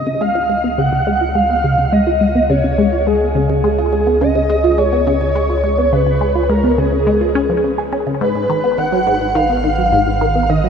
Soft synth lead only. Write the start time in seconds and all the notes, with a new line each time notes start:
Already playing: D#5
0.21 F5
0.78 F#5
1.35 F5
1.93 D#5
2.50 C#5
3.07 G#4
3.64 G#4
4.21 D#5
4.78 C#5
5.93 B4
6.50 A#4
6.78 G#4
8.21 B4
8.78 F#5
9.35 F5
10.49 D#5